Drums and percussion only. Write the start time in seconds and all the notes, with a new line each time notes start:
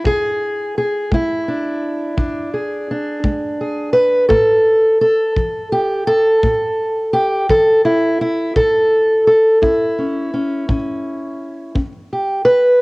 0.05 kick
1.12 kick
2.18 kick
3.24 kick
4.30 kick
5.37 kick
6.43 kick
7.50 kick
8.56 kick
9.63 kick
10.69 kick
11.76 kick